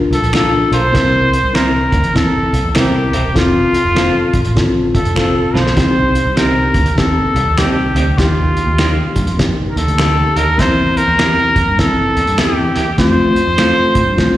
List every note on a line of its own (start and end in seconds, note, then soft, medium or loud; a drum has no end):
0.00 0.15 D4 medium
0.00 0.16 F4 medium
0.00 0.16 A#4 medium
0.11 0.20 C2 medium
0.11 0.33 A4 medium
0.11 closed hi-hat medium
0.22 0.62 A#1 medium
0.22 closed hi-hat medium
0.33 0.76 A#3 medium
0.33 0.76 D4 medium
0.33 0.49 D4 medium
0.33 0.76 F4 medium
0.33 0.50 F4 medium
0.33 0.70 A4 medium
0.33 0.50 A#4 medium
0.33 finger snap medium
0.33 snare loud
0.33 closed hi-hat medium
0.72 0.90 B1 medium
0.72 0.79 D4 medium
0.72 0.80 F4 medium
0.72 0.80 A#4 medium
0.72 1.56 C5 medium
0.72 closed hi-hat medium
0.93 1.25 C2 loud
0.93 1.88 C3 medium
0.93 1.36 C4 medium
0.93 1.36 E4 medium
0.93 1.37 A#4 loud
0.93 kick loud
0.93 snare loud
0.93 closed hi-hat medium
1.33 closed hi-hat medium
1.44 1.68 C2 loud
1.53 1.96 C4 medium
1.53 1.71 C4 medium
1.53 1.97 E4 medium
1.53 1.71 E4 medium
1.53 1.97 A#4 medium
1.53 2.18 A#4 medium
1.53 1.71 A#4 medium
1.53 finger snap medium
1.53 snare loud
1.53 closed hi-hat medium
1.92 2.01 D2 loud
1.92 kick medium
1.92 closed hi-hat medium
2.04 2.28 E2 medium
2.04 closed hi-hat soft
2.14 2.58 A#3 medium
2.14 2.57 C4 medium
2.14 2.57 E4 medium
2.14 2.71 A4 medium
2.14 kick medium
2.14 snare loud
2.14 closed hi-hat medium
2.53 2.62 C2 medium
2.53 closed hi-hat medium
2.64 2.73 E2 medium
2.71 3.17 C4 medium
2.71 2.91 C4 medium
2.71 3.18 E4 medium
2.71 2.79 A4 medium
2.71 finger snap medium
2.75 3.06 C2 medium
2.75 2.92 E4 medium
2.75 3.37 G4 medium
2.75 3.18 A#4 medium
2.75 2.92 A#4 medium
2.75 snare loud
2.75 closed hi-hat medium
3.13 3.32 E1 medium
3.13 3.21 C4 medium
3.13 3.21 E4 medium
3.13 3.22 A#4 medium
3.13 closed hi-hat medium
3.34 3.67 F1 medium
3.34 3.77 C4 medium
3.34 3.78 F4 medium
3.34 4.57 F4 loud
3.34 3.78 A4 loud
3.34 kick loud
3.34 snare loud
3.34 closed hi-hat medium
3.74 closed hi-hat medium
3.85 4.09 F1 medium
3.95 4.38 C4 medium
3.95 4.12 C4 medium
3.95 4.38 F4 medium
3.95 4.12 F4 medium
3.95 4.39 A4 medium
3.95 4.13 A4 medium
3.95 finger snap medium
3.95 snare medium
3.95 closed hi-hat medium
4.34 4.43 A#1 medium
4.34 kick medium
4.34 closed hi-hat medium
4.45 4.70 A1 medium
4.45 closed hi-hat soft
4.55 4.98 C4 medium
4.55 4.99 F4 medium
4.55 4.99 A4 medium
4.55 kick medium
4.55 snare loud
4.55 closed hi-hat medium
4.95 5.04 G1 medium
4.95 5.16 A4 medium
4.95 kick medium
4.95 closed hi-hat medium
5.05 5.45 F1 medium
5.05 closed hi-hat medium
5.15 5.58 C4 medium
5.15 5.32 C4 medium
5.15 5.59 F4 medium
5.15 5.33 F4 medium
5.15 5.59 A4 medium
5.15 5.33 A4 medium
5.15 5.59 A4 medium
5.15 finger snap medium
5.15 snare medium
5.54 5.72 B1 medium
5.54 5.62 C4 medium
5.54 5.62 F4 medium
5.54 5.63 A4 medium
5.54 6.38 C5 loud
5.54 snare medium
5.67 snare medium
5.76 6.07 C2 medium
5.76 6.71 C3 medium
5.76 6.19 C4 medium
5.76 6.19 D#4 medium
5.76 6.20 G4 loud
5.76 kick loud
5.76 snare loud
5.76 closed hi-hat medium
6.15 closed hi-hat medium
6.25 6.50 C2 medium
6.36 6.53 C4 medium
6.36 6.79 C4 medium
6.36 6.79 D#4 medium
6.36 6.53 D#4 medium
6.36 6.80 G4 medium
6.36 6.54 G4 medium
6.36 6.99 A#4 medium
6.36 finger snap medium
6.36 snare loud
6.36 closed hi-hat medium
6.74 6.84 D2 medium
6.74 kick medium
6.74 closed hi-hat medium
6.86 7.10 D#2 medium
6.86 closed hi-hat soft
6.97 7.40 C4 medium
6.97 7.40 D#4 medium
6.97 7.41 G4 medium
6.97 7.60 A4 medium
6.97 kick medium
6.97 snare loud
6.97 closed hi-hat medium
7.35 7.44 C2 medium
7.35 closed hi-hat medium
7.46 7.55 D#2 medium
7.57 7.88 C2 medium
7.57 8.00 C4 medium
7.57 7.74 C4 medium
7.57 8.00 D#4 medium
7.57 7.74 D#4 medium
7.57 8.19 G4 medium
7.57 8.01 G4 medium
7.57 7.75 G4 medium
7.57 finger snap medium
7.57 snare loud
7.57 closed hi-hat medium
7.95 8.13 D2 medium
7.95 8.03 C4 medium
7.95 8.04 D#4 medium
7.95 8.04 G4 medium
7.95 closed hi-hat medium
8.17 8.49 D#2 medium
8.17 9.12 D#3 medium
8.17 8.60 A#3 medium
8.17 8.60 D#4 medium
8.17 9.42 F4 medium
8.17 8.61 G4 loud
8.17 kick loud
8.17 snare loud
8.17 closed hi-hat medium
8.57 closed hi-hat medium
8.67 8.91 D#2 medium
8.78 9.21 A#3 medium
8.78 8.95 A#3 medium
8.78 9.21 D#4 medium
8.78 8.95 D#4 medium
8.78 9.21 G4 medium
8.78 8.95 G4 medium
8.78 finger snap medium
8.78 snare loud
8.78 closed hi-hat medium
9.16 9.25 G2 medium
9.16 kick medium
9.16 closed hi-hat medium
9.27 9.51 F2 medium
9.27 closed hi-hat medium
9.38 9.81 A#3 medium
9.38 9.81 D#4 medium
9.38 9.81 G4 medium
9.38 kick medium
9.38 snare loud
9.38 closed hi-hat medium
9.68 9.79 A#4 medium
9.76 9.85 D#2 medium
9.76 10.38 A4 medium
9.76 closed hi-hat medium
9.87 10.27 D2 medium
9.87 closed hi-hat medium
9.98 10.41 A#3 medium
9.98 10.14 A#3 medium
9.98 10.41 D#4 medium
9.98 10.15 D#4 medium
9.98 10.41 G4 medium
9.98 10.15 G4 medium
9.98 finger snap medium
9.98 snare loud
9.98 closed hi-hat medium
10.36 10.54 D#2 medium
10.36 10.44 A#3 medium
10.36 10.44 D#4 medium
10.36 10.45 G4 medium
10.36 10.61 A#4 medium
10.36 closed hi-hat medium
10.58 10.89 E2 medium
10.58 11.52 E3 medium
10.58 11.01 A#3 medium
10.58 11.01 C4 medium
10.58 11.01 E4 loud
10.58 10.99 C5 loud
10.58 kick loud
10.58 snare loud
10.58 closed hi-hat medium
10.97 11.81 A#4 loud
10.97 closed hi-hat medium
11.08 11.32 E2 medium
11.18 11.61 A#3 medium
11.18 11.35 A#3 medium
11.18 11.61 C4 medium
11.18 11.35 E4 medium
11.18 11.61 E4 medium
11.18 11.35 G4 medium
11.18 finger snap medium
11.18 snare medium
11.18 closed hi-hat medium
11.56 11.65 F2 loud
11.56 kick medium
11.56 closed hi-hat medium
11.68 11.92 G2 medium
11.78 12.20 A#3 medium
11.78 12.21 C4 medium
11.78 12.21 E4 medium
11.78 12.41 A4 medium
11.78 kick medium
11.78 snare loud
11.78 closed hi-hat medium
12.17 12.26 E2 medium
12.17 closed hi-hat medium
12.27 12.36 G2 medium
12.27 closed hi-hat medium
12.38 12.69 E2 medium
12.38 12.54 A#3 medium
12.38 12.80 A#3 medium
12.38 12.81 C4 medium
12.38 12.54 E4 medium
12.38 12.81 E4 medium
12.38 12.55 G4 medium
12.38 12.99 G4 medium
12.38 finger snap medium
12.38 snare loud
12.38 closed hi-hat medium
12.76 12.94 E2 medium
12.76 12.83 A#3 medium
12.76 12.84 E4 medium
12.76 12.84 G4 medium
12.76 snare soft
12.76 closed hi-hat medium
12.98 13.29 F2 medium
12.98 13.40 A3 loud
12.98 13.41 C4 medium
12.98 13.41 F4 loud
12.98 14.37 C5 loud
12.98 kick loud
12.98 snare loud
12.98 closed hi-hat loud
13.36 closed hi-hat medium
13.47 13.71 F2 medium
13.58 14.00 A3 medium
13.58 14.00 C4 medium
13.58 13.74 C4 medium
13.58 14.00 F4 medium
13.58 13.74 F4 medium
13.58 13.75 A4 medium
13.58 finger snap medium
13.58 snare loud
13.58 closed hi-hat medium
13.95 14.04 A2 medium
13.95 kick medium
13.95 closed hi-hat medium
14.07 14.31 G2 medium
14.16 14.37 A3 medium
14.16 14.37 C4 medium
14.16 14.37 F4 medium
14.16 kick medium
14.16 snare loud
14.16 closed hi-hat medium